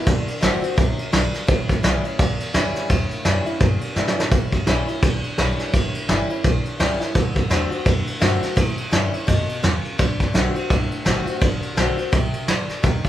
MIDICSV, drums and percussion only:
0, 0, Header, 1, 2, 480
1, 0, Start_track
1, 0, Tempo, 354820
1, 91, Time_signature, 4, 2, 24, 8
1, 17707, End_track
2, 0, Start_track
2, 0, Title_t, "Drums"
2, 92, Note_on_c, 9, 36, 120
2, 94, Note_on_c, 9, 51, 93
2, 228, Note_off_c, 9, 36, 0
2, 229, Note_off_c, 9, 51, 0
2, 376, Note_on_c, 9, 51, 69
2, 511, Note_off_c, 9, 51, 0
2, 573, Note_on_c, 9, 38, 101
2, 573, Note_on_c, 9, 51, 74
2, 708, Note_off_c, 9, 38, 0
2, 708, Note_off_c, 9, 51, 0
2, 858, Note_on_c, 9, 51, 60
2, 993, Note_off_c, 9, 51, 0
2, 1051, Note_on_c, 9, 36, 121
2, 1052, Note_on_c, 9, 51, 80
2, 1187, Note_off_c, 9, 36, 0
2, 1187, Note_off_c, 9, 51, 0
2, 1335, Note_on_c, 9, 51, 65
2, 1470, Note_off_c, 9, 51, 0
2, 1529, Note_on_c, 9, 38, 114
2, 1529, Note_on_c, 9, 51, 88
2, 1664, Note_off_c, 9, 38, 0
2, 1664, Note_off_c, 9, 51, 0
2, 1814, Note_on_c, 9, 38, 34
2, 1814, Note_on_c, 9, 51, 68
2, 1949, Note_off_c, 9, 38, 0
2, 1949, Note_off_c, 9, 51, 0
2, 2004, Note_on_c, 9, 51, 85
2, 2009, Note_on_c, 9, 36, 127
2, 2140, Note_off_c, 9, 51, 0
2, 2144, Note_off_c, 9, 36, 0
2, 2292, Note_on_c, 9, 36, 94
2, 2294, Note_on_c, 9, 51, 68
2, 2427, Note_off_c, 9, 36, 0
2, 2429, Note_off_c, 9, 51, 0
2, 2489, Note_on_c, 9, 38, 109
2, 2489, Note_on_c, 9, 51, 75
2, 2624, Note_off_c, 9, 38, 0
2, 2624, Note_off_c, 9, 51, 0
2, 2770, Note_on_c, 9, 51, 60
2, 2905, Note_off_c, 9, 51, 0
2, 2966, Note_on_c, 9, 36, 127
2, 2967, Note_on_c, 9, 51, 95
2, 3101, Note_off_c, 9, 36, 0
2, 3102, Note_off_c, 9, 51, 0
2, 3247, Note_on_c, 9, 51, 76
2, 3383, Note_off_c, 9, 51, 0
2, 3440, Note_on_c, 9, 38, 110
2, 3440, Note_on_c, 9, 51, 86
2, 3575, Note_off_c, 9, 38, 0
2, 3575, Note_off_c, 9, 51, 0
2, 3726, Note_on_c, 9, 38, 34
2, 3726, Note_on_c, 9, 51, 63
2, 3861, Note_off_c, 9, 38, 0
2, 3861, Note_off_c, 9, 51, 0
2, 3919, Note_on_c, 9, 51, 89
2, 3922, Note_on_c, 9, 36, 116
2, 4055, Note_off_c, 9, 51, 0
2, 4057, Note_off_c, 9, 36, 0
2, 4198, Note_on_c, 9, 51, 71
2, 4334, Note_off_c, 9, 51, 0
2, 4396, Note_on_c, 9, 38, 98
2, 4396, Note_on_c, 9, 51, 82
2, 4531, Note_off_c, 9, 38, 0
2, 4531, Note_off_c, 9, 51, 0
2, 4682, Note_on_c, 9, 51, 65
2, 4817, Note_off_c, 9, 51, 0
2, 4875, Note_on_c, 9, 51, 87
2, 4879, Note_on_c, 9, 36, 123
2, 5011, Note_off_c, 9, 51, 0
2, 5015, Note_off_c, 9, 36, 0
2, 5156, Note_on_c, 9, 51, 70
2, 5291, Note_off_c, 9, 51, 0
2, 5357, Note_on_c, 9, 38, 66
2, 5492, Note_off_c, 9, 38, 0
2, 5516, Note_on_c, 9, 38, 79
2, 5651, Note_off_c, 9, 38, 0
2, 5676, Note_on_c, 9, 38, 101
2, 5812, Note_off_c, 9, 38, 0
2, 5836, Note_on_c, 9, 51, 83
2, 5838, Note_on_c, 9, 36, 118
2, 5971, Note_off_c, 9, 51, 0
2, 5973, Note_off_c, 9, 36, 0
2, 6121, Note_on_c, 9, 36, 84
2, 6121, Note_on_c, 9, 51, 71
2, 6256, Note_off_c, 9, 36, 0
2, 6257, Note_off_c, 9, 51, 0
2, 6315, Note_on_c, 9, 38, 104
2, 6315, Note_on_c, 9, 51, 82
2, 6451, Note_off_c, 9, 38, 0
2, 6451, Note_off_c, 9, 51, 0
2, 6604, Note_on_c, 9, 51, 61
2, 6739, Note_off_c, 9, 51, 0
2, 6800, Note_on_c, 9, 36, 127
2, 6800, Note_on_c, 9, 51, 94
2, 6935, Note_off_c, 9, 36, 0
2, 6936, Note_off_c, 9, 51, 0
2, 7083, Note_on_c, 9, 51, 65
2, 7219, Note_off_c, 9, 51, 0
2, 7279, Note_on_c, 9, 38, 115
2, 7279, Note_on_c, 9, 51, 89
2, 7414, Note_off_c, 9, 38, 0
2, 7414, Note_off_c, 9, 51, 0
2, 7563, Note_on_c, 9, 38, 33
2, 7563, Note_on_c, 9, 51, 72
2, 7699, Note_off_c, 9, 38, 0
2, 7699, Note_off_c, 9, 51, 0
2, 7760, Note_on_c, 9, 36, 108
2, 7763, Note_on_c, 9, 51, 87
2, 7895, Note_off_c, 9, 36, 0
2, 7898, Note_off_c, 9, 51, 0
2, 8042, Note_on_c, 9, 51, 71
2, 8178, Note_off_c, 9, 51, 0
2, 8235, Note_on_c, 9, 38, 97
2, 8235, Note_on_c, 9, 51, 66
2, 8370, Note_off_c, 9, 38, 0
2, 8370, Note_off_c, 9, 51, 0
2, 8520, Note_on_c, 9, 51, 60
2, 8655, Note_off_c, 9, 51, 0
2, 8716, Note_on_c, 9, 51, 84
2, 8718, Note_on_c, 9, 36, 111
2, 8851, Note_off_c, 9, 51, 0
2, 8853, Note_off_c, 9, 36, 0
2, 8999, Note_on_c, 9, 51, 59
2, 9135, Note_off_c, 9, 51, 0
2, 9198, Note_on_c, 9, 38, 102
2, 9198, Note_on_c, 9, 51, 86
2, 9334, Note_off_c, 9, 38, 0
2, 9334, Note_off_c, 9, 51, 0
2, 9482, Note_on_c, 9, 38, 33
2, 9482, Note_on_c, 9, 51, 61
2, 9618, Note_off_c, 9, 38, 0
2, 9618, Note_off_c, 9, 51, 0
2, 9675, Note_on_c, 9, 51, 89
2, 9676, Note_on_c, 9, 36, 112
2, 9810, Note_off_c, 9, 51, 0
2, 9812, Note_off_c, 9, 36, 0
2, 9955, Note_on_c, 9, 51, 57
2, 9957, Note_on_c, 9, 36, 87
2, 10090, Note_off_c, 9, 51, 0
2, 10092, Note_off_c, 9, 36, 0
2, 10153, Note_on_c, 9, 38, 94
2, 10153, Note_on_c, 9, 51, 85
2, 10289, Note_off_c, 9, 38, 0
2, 10289, Note_off_c, 9, 51, 0
2, 10438, Note_on_c, 9, 51, 64
2, 10573, Note_off_c, 9, 51, 0
2, 10630, Note_on_c, 9, 51, 99
2, 10633, Note_on_c, 9, 36, 124
2, 10765, Note_off_c, 9, 51, 0
2, 10768, Note_off_c, 9, 36, 0
2, 10917, Note_on_c, 9, 51, 71
2, 11052, Note_off_c, 9, 51, 0
2, 11113, Note_on_c, 9, 38, 115
2, 11113, Note_on_c, 9, 51, 92
2, 11248, Note_off_c, 9, 38, 0
2, 11248, Note_off_c, 9, 51, 0
2, 11396, Note_on_c, 9, 38, 34
2, 11396, Note_on_c, 9, 51, 70
2, 11531, Note_off_c, 9, 38, 0
2, 11531, Note_off_c, 9, 51, 0
2, 11592, Note_on_c, 9, 36, 113
2, 11594, Note_on_c, 9, 51, 93
2, 11728, Note_off_c, 9, 36, 0
2, 11729, Note_off_c, 9, 51, 0
2, 11873, Note_on_c, 9, 51, 70
2, 12008, Note_off_c, 9, 51, 0
2, 12074, Note_on_c, 9, 38, 114
2, 12074, Note_on_c, 9, 51, 79
2, 12209, Note_off_c, 9, 38, 0
2, 12209, Note_off_c, 9, 51, 0
2, 12358, Note_on_c, 9, 51, 63
2, 12494, Note_off_c, 9, 51, 0
2, 12554, Note_on_c, 9, 36, 105
2, 12556, Note_on_c, 9, 51, 96
2, 12690, Note_off_c, 9, 36, 0
2, 12691, Note_off_c, 9, 51, 0
2, 12840, Note_on_c, 9, 51, 65
2, 12976, Note_off_c, 9, 51, 0
2, 13035, Note_on_c, 9, 38, 113
2, 13035, Note_on_c, 9, 51, 72
2, 13171, Note_off_c, 9, 38, 0
2, 13171, Note_off_c, 9, 51, 0
2, 13319, Note_on_c, 9, 51, 57
2, 13455, Note_off_c, 9, 51, 0
2, 13515, Note_on_c, 9, 51, 83
2, 13518, Note_on_c, 9, 36, 117
2, 13650, Note_off_c, 9, 51, 0
2, 13653, Note_off_c, 9, 36, 0
2, 13797, Note_on_c, 9, 51, 64
2, 13800, Note_on_c, 9, 36, 86
2, 13932, Note_off_c, 9, 51, 0
2, 13936, Note_off_c, 9, 36, 0
2, 13996, Note_on_c, 9, 38, 88
2, 13996, Note_on_c, 9, 51, 83
2, 14132, Note_off_c, 9, 38, 0
2, 14132, Note_off_c, 9, 51, 0
2, 14280, Note_on_c, 9, 51, 62
2, 14415, Note_off_c, 9, 51, 0
2, 14477, Note_on_c, 9, 51, 89
2, 14479, Note_on_c, 9, 36, 114
2, 14613, Note_off_c, 9, 51, 0
2, 14614, Note_off_c, 9, 36, 0
2, 14763, Note_on_c, 9, 51, 63
2, 14899, Note_off_c, 9, 51, 0
2, 14958, Note_on_c, 9, 38, 109
2, 14958, Note_on_c, 9, 51, 86
2, 15093, Note_off_c, 9, 38, 0
2, 15093, Note_off_c, 9, 51, 0
2, 15244, Note_on_c, 9, 51, 72
2, 15380, Note_off_c, 9, 51, 0
2, 15443, Note_on_c, 9, 51, 102
2, 15444, Note_on_c, 9, 36, 124
2, 15578, Note_off_c, 9, 51, 0
2, 15579, Note_off_c, 9, 36, 0
2, 15725, Note_on_c, 9, 51, 69
2, 15860, Note_off_c, 9, 51, 0
2, 15926, Note_on_c, 9, 38, 105
2, 15926, Note_on_c, 9, 51, 78
2, 16061, Note_off_c, 9, 38, 0
2, 16061, Note_off_c, 9, 51, 0
2, 16208, Note_on_c, 9, 51, 67
2, 16344, Note_off_c, 9, 51, 0
2, 16406, Note_on_c, 9, 36, 127
2, 16407, Note_on_c, 9, 51, 98
2, 16541, Note_off_c, 9, 36, 0
2, 16542, Note_off_c, 9, 51, 0
2, 16686, Note_on_c, 9, 51, 68
2, 16822, Note_off_c, 9, 51, 0
2, 16885, Note_on_c, 9, 38, 113
2, 16885, Note_on_c, 9, 51, 88
2, 17020, Note_off_c, 9, 38, 0
2, 17020, Note_off_c, 9, 51, 0
2, 17171, Note_on_c, 9, 38, 34
2, 17171, Note_on_c, 9, 51, 62
2, 17306, Note_off_c, 9, 38, 0
2, 17306, Note_off_c, 9, 51, 0
2, 17364, Note_on_c, 9, 51, 82
2, 17367, Note_on_c, 9, 36, 119
2, 17499, Note_off_c, 9, 51, 0
2, 17502, Note_off_c, 9, 36, 0
2, 17646, Note_on_c, 9, 51, 67
2, 17650, Note_on_c, 9, 36, 75
2, 17707, Note_off_c, 9, 36, 0
2, 17707, Note_off_c, 9, 51, 0
2, 17707, End_track
0, 0, End_of_file